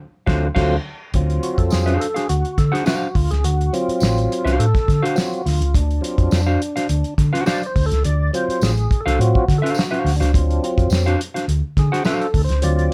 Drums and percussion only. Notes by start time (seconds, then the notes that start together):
0.27 kick, snare
0.56 kick, snare, crash
1.14 kick, closed hi-hat
1.30 closed hi-hat
1.43 closed hi-hat
1.58 kick, closed hi-hat
1.70 snare, tambourine
1.87 closed hi-hat
2.01 closed hi-hat
2.16 snare, closed hi-hat
2.29 closed hi-hat
2.45 closed hi-hat
2.58 kick, snare, closed hi-hat
2.75 snare, closed hi-hat
2.86 snare, tambourine
3.15 kick, open hi-hat
3.31 snare, closed hi-hat
3.44 closed hi-hat
3.61 closed hi-hat
3.74 closed hi-hat
3.89 closed hi-hat
4.00 snare, tambourine
4.18 closed hi-hat
4.32 closed hi-hat
4.47 snare, closed hi-hat
4.60 closed hi-hat
4.75 kick, snare, closed hi-hat
4.88 kick, snare, closed hi-hat
5.05 closed hi-hat
5.16 snare, tambourine
5.33 closed hi-hat
5.46 snare, open hi-hat
5.62 closed hi-hat
5.75 kick, closed hi-hat
5.91 closed hi-hat
6.04 closed hi-hat
6.18 kick, closed hi-hat
6.31 snare, tambourine
6.62 closed hi-hat
6.77 snare, closed hi-hat
6.89 closed hi-hat
7.04 closed hi-hat
7.18 kick, snare, closed hi-hat
7.35 snare, closed hi-hat
7.46 snare, tambourine
7.63 closed hi-hat
7.76 kick, open hi-hat
7.92 snare, closed hi-hat
8.04 closed hi-hat
8.34 closed hi-hat
8.50 closed hi-hat
8.61 snare, tambourine
8.77 closed hi-hat
8.91 kick, closed hi-hat
9.08 snare, closed hi-hat
9.21 closed hi-hat
9.35 kick
9.48 kick, snare, closed hi-hat
9.66 closed hi-hat
9.74 tambourine
9.79 snare
9.93 closed hi-hat
10.06 snare, open hi-hat
10.22 snare, closed hi-hat
10.34 kick, closed hi-hat
10.51 closed hi-hat
10.64 closed hi-hat
10.78 kick, closed hi-hat
10.90 snare, tambourine
11.07 closed hi-hat
11.21 closed hi-hat
11.36 snare, closed hi-hat
11.49 closed hi-hat
11.77 kick, snare, closed hi-hat
11.94 snare, closed hi-hat
12.05 snare, tambourine
12.21 closed hi-hat
12.34 kick, open hi-hat
12.49 snare, closed hi-hat
12.62 closed hi-hat
12.79 closed hi-hat